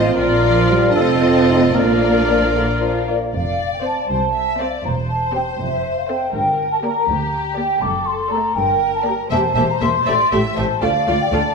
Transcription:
Already playing: bassoon F3, cello section C4, viola section F4, violin section C5 D#5, flute section D#5
0.17 double bass section A#1, bassoon F3, viola section F4, clarinet F4, oboe A#4, violin section A#4 D5, flute section D5
0.43 cello section F3
0.69 cello section G3, french horn section F4 D5
0.89 cello section D4
0.96 double bass section F1, bassoon F3, cello section C4, viola section F4, oboe A4, violin section A4 D#5, clarinet A4, flute section D#5
1.23 clarinet F4
1.49 clarinet D#4, french horn section A4 D#5
1.75 double bass section A#1, bassoon F3, cello section A#3, clarinet D4, viola section F4, oboe A#4, violin section A#4 D5, flute section D5
2.29 french horn section A#4 D5
2.55 bassoon D3
2.81 bassoon F3
3.08 bassoon A#3, french horn section A#4 D5
3.34 double bass section F1, cello section F2, violin section D5, flute section F5
3.72 flute section G5
3.83 viola section C4 C5, violin section C5, flute section A5
4.09 cello section C2, double bass section C2, violin section C5
4.34 violin section E5
4.60 viola section C4 C5, violin section C5 D5, flute section F5
4.84 double bass section E1, cello section E2, violin section C5, flute section A#5
5.09 flute section A5
5.35 viola section C4 G4, violin section C5, flute section G5
5.60 double bass section F1, cello section F2, flute section E5
5.98 flute section F5
6.09 viola section C4 A4, violin section C5, flute section G5
6.34 double bass section G1, cello section G2, violin section A#4, flute section G5
6.71 flute section A5
6.83 viola section A#3 G4, violin section D5, flute section A#5
7.08 cello section D2, double bass section D2, violin section G4
7.57 viola section A#3 G4, violin section D5, flute section G5
7.81 double bass section F#1, cello section F#2, violin section A4, flute section D6
8.06 flute section C6
8.31 viola section A3 A4, violin section D5, flute section A#5
8.56 double bass section G1, cello section G2, violin section A#4, flute section G5
8.94 flute section A5
9.06 viola section A#3 G4, violin section D5, flute section A#5
9.31 double bass section E1, cello section E2, viola section A#3 G4, violin section C5 E5, flute section A5
9.55 double bass section E1, cello section E2, viola section A#3 G4, violin section E5
9.70 flute section A#5
9.81 double bass section E1, cello section E2, viola section A#3 G4, violin section E5, flute section C6
10.06 double bass section A1, cello section A2, viola section A3 G4, violin section D5 E5
10.31 double bass section A1, cello section A2, viola section A3 G4, violin section E5
10.56 double bass section A1, cello section A2, viola section A3 G4, violin section C5 E5, flute section A5
10.82 cello section D2, double bass section D2, viola section A3 F4, violin section D5, flute section F5
11.07 cello section D2, double bass section D2, viola section A3 F4, violin section D5
11.21 flute section G5
11.32 cello section D2, double bass section D2, viola section A3 F4, violin section D5, flute section A5

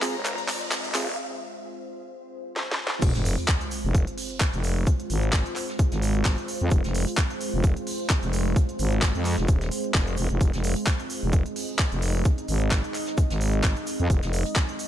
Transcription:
Already playing: ambient pad G#3 C4 F4 C5, string section F4 C5 F5 A#5, riser
0.02 synth stab C4 F4 G#4, clap, open hi-hat, shaker
0.15 fm bass F1
0.25 clap, closed hi-hat, shaker
0.38 closed hi-hat
0.48 clap, open hi-hat
0.71 snare, clap, closed hi-hat, shaker
0.84 fm bass F1, closed hi-hat
0.94 synth stab C4 F4 G#4, snare, clap, open hi-hat, shaker
2.56 snare
2.71 snare
2.87 snare
3.02 fm bass F1, ambient pad G#3 C4 F4 C5, kick, closed hi-hat, crash, sub drop, shaker
3.15 fm bass F1, snare, closed hi-hat
3.25 open hi-hat, shaker
3.38 closed hi-hat
3.48 kick, snare, clap, closed hi-hat, shaker
3.61 closed hi-hat
3.71 open hi-hat, shaker
3.84 fm bass F1
3.94 kick, closed hi-hat, shaker
4.07 closed hi-hat
4.18 open hi-hat
4.30 closed hi-hat
4.40 kick, snare, clap, closed hi-hat, shaker
4.53 fm bass F1, closed hi-hat
4.64 open hi-hat, shaker
4.87 kick, closed hi-hat, shaker
5.00 closed hi-hat
5.10 fm bass G#1, open hi-hat, shaker
5.23 closed hi-hat
5.32 kick, snare, clap, closed hi-hat, shaker
5.46 closed hi-hat
5.56 clap, open hi-hat, shaker
5.69 snare, closed hi-hat
5.79 kick, closed hi-hat, shaker
5.92 fm bass G#1, snare, closed hi-hat
6.02 open hi-hat, shaker
6.15 closed hi-hat
6.25 kick, snare, clap, closed hi-hat, shaker
6.38 closed hi-hat
6.48 open hi-hat, shaker
6.61 fm bass F2, closed hi-hat
6.71 fm bass F1, kick, closed hi-hat, shaker
6.84 fm bass F1, snare, closed hi-hat
6.94 open hi-hat, shaker
7.08 closed hi-hat
7.17 kick, snare, clap, closed hi-hat, shaker
7.30 closed hi-hat
7.41 open hi-hat, shaker
7.53 fm bass F1
7.64 kick, closed hi-hat, shaker
7.77 closed hi-hat
7.87 open hi-hat
8.00 closed hi-hat
8.10 kick, snare, clap, closed hi-hat, shaker
8.23 fm bass F1, closed hi-hat
8.33 open hi-hat, shaker
8.56 kick, closed hi-hat, shaker
8.69 closed hi-hat
8.79 fm bass G#1, open hi-hat, shaker
8.92 closed hi-hat
9.02 kick, snare, clap, closed hi-hat, shaker
9.15 fm bass F2, closed hi-hat
9.25 clap, open hi-hat, shaker
9.37 fm bass F1, snare, closed hi-hat
9.48 fm bass D#1, kick, closed hi-hat, shaker
9.61 snare, closed hi-hat
9.71 open hi-hat, shaker
9.84 closed hi-hat
9.94 fm bass F1, kick, snare, clap, closed hi-hat, shaker
10.07 closed hi-hat
10.17 fm bass F1, open hi-hat, shaker
10.30 fm bass F1, closed hi-hat
10.41 fm bass F1, ambient pad D#4 D#5, kick, closed hi-hat, shaker
10.53 fm bass F1, snare, closed hi-hat
10.64 open hi-hat, shaker
10.76 closed hi-hat
10.86 kick, snare, clap, closed hi-hat, shaker
11.00 closed hi-hat
11.10 open hi-hat, shaker
11.23 fm bass F1
11.33 kick, closed hi-hat, shaker
11.46 closed hi-hat
11.56 open hi-hat
11.69 closed hi-hat
11.79 kick, snare, clap, closed hi-hat, shaker
11.92 fm bass F1, closed hi-hat
12.02 open hi-hat, shaker
12.25 kick, closed hi-hat, shaker
12.38 closed hi-hat
12.48 fm bass G#1, open hi-hat, shaker
12.61 closed hi-hat
12.71 kick, snare, clap, closed hi-hat, shaker
12.84 closed hi-hat
12.94 clap, open hi-hat, shaker
13.06 snare, closed hi-hat
13.18 kick, closed hi-hat, shaker
13.30 fm bass G#1, snare, closed hi-hat
13.41 open hi-hat, shaker
13.53 closed hi-hat
13.63 kick, snare, clap, closed hi-hat, shaker
13.77 closed hi-hat
13.87 open hi-hat, shaker
14.00 fm bass F2, closed hi-hat
14.10 fm bass F1, kick, closed hi-hat, shaker
14.23 fm bass F1, snare, closed hi-hat
14.33 open hi-hat, shaker
14.46 closed hi-hat
14.55 kick, snare, clap, closed hi-hat, shaker
14.69 closed hi-hat
14.79 open hi-hat, shaker

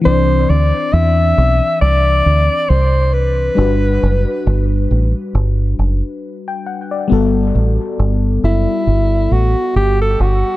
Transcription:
0.01 fm electric piano E3 C4, alto saxophone C5
0.06 fingered electric bass C2, fm electric piano D4 D5
0.50 fingered electric bass D2, alto saxophone D5
0.93 fingered electric bass E2, alto saxophone E5
1.38 fingered electric bass B1
1.81 fingered electric bass C2, alto saxophone D5
2.26 fingered electric bass D2
2.69 fingered electric bass C2, alto saxophone C5
3.13 alto saxophone B4
3.55 fingered electric bass G1, fm electric piano G3 D4 F#4
3.61 fm electric piano B4
4.03 fingered electric bass F#1
4.47 fingered electric bass G1
4.91 fingered electric bass A1
5.35 fingered electric bass G1
5.79 fingered electric bass F#1
6.48 fm electric piano G5
6.67 fm electric piano F#5
6.91 fm electric piano D5
7.08 fingered electric bass G1, fm electric piano G3 B3 F#4
7.13 fm electric piano A4
7.55 fingered electric bass A1
7.99 fingered electric bass G1
8.44 fingered electric bass F#1, alto saxophone E4
8.87 fingered electric bass G1
9.31 fingered electric bass A1, alto saxophone F#4
9.76 fingered electric bass G1, alto saxophone G4
10.01 alto saxophone A4
10.20 fingered electric bass G1, alto saxophone F#4

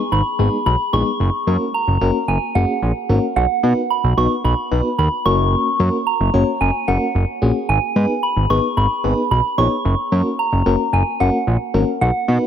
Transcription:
Already playing: synth bell C#6
0.12 analog synth bass G#1, synth bell B5
0.39 analog synth bass G#1, fm electric piano G#3 B3 D#4 G#4
0.66 analog synth bass B1, synth bell B5
0.93 analog synth bass A#1, fm electric piano G#3 B3 D#4 G#4, synth bell C#6
1.20 analog synth bass F#1
1.47 analog synth bass F#2, fm electric piano A#3 C#4 F#4 A#4
1.74 synth bell A#5
1.88 analog synth bass F#1
2.01 analog synth bass F#1, fm electric piano A#3 C#4 F#4 A#4
2.28 analog synth bass F#1, synth bell G#5
2.55 analog synth bass F#1, fm electric piano A#3 C#4 F#4 G#4, synth bell F#5
2.82 analog synth bass A#1
3.09 analog synth bass G#1, fm electric piano A#3 C#4 F#4 A#4
3.36 analog synth bass B1, synth bell F#5
3.63 analog synth bass B2, fm electric piano B3 D#4 F#4 B4
3.90 synth bell B5
4.04 analog synth bass B1
4.17 analog synth bass B1, fm electric piano B3 D#4 F#4 B4, synth bell C#6
4.44 analog synth bass B1, synth bell B5
4.71 analog synth bass B1, fm electric piano B3 D#4 F#4 B4
4.98 analog synth bass D#2, synth bell B5
5.26 analog synth bass F#1, fm electric piano A#3 C#4 F#4 A#4, synth bell C#6
5.80 analog synth bass F#2, fm electric piano A#3 C#4 F#4 A#4
6.07 synth bell A#5
6.20 analog synth bass F#1
6.34 analog synth bass F#1, fm electric piano A#3 C#4 F#4 C#5
6.61 analog synth bass F#1, synth bell G#5
6.88 analog synth bass F#1, fm electric piano A#3 C#4 F#4 A#4, synth bell F#5
7.15 analog synth bass F#1
7.42 analog synth bass A#1, fm electric piano A#3 C#4 F#4 G#4
7.69 analog synth bass G#1, synth bell G#5
7.96 analog synth bass G#2, fm electric piano B3 D#4 G#4 B4
8.23 synth bell B5
8.36 analog synth bass G#1
8.50 analog synth bass G#1, fm electric piano B3 D#4 G#4 B4, synth bell C#6
8.77 analog synth bass G#1, synth bell B5
9.04 analog synth bass G#1, fm electric piano B3 D#4 G#4 B4
9.31 analog synth bass B1, synth bell B5
9.58 analog synth bass A#1, fm electric piano B3 D#4 G#4 C#5, synth bell C#6
9.85 analog synth bass F#1
10.12 analog synth bass F#2, fm electric piano A#3 C#4 F#4 A#4
10.39 synth bell A#5
10.53 analog synth bass F#1
10.66 analog synth bass F#1, fm electric piano A#3 C#4 F#4 A#4
10.93 analog synth bass F#1, synth bell G#5
11.20 analog synth bass F#1, fm electric piano A#3 C#4 F#4 A#4, synth bell F#5
11.47 analog synth bass A#1
11.74 analog synth bass G#1, fm electric piano A#3 C#4 F#4 A#4
12.01 analog synth bass B1, synth bell F#5
12.28 analog synth bass B2, fm electric piano B3 D#4 F#4 B4

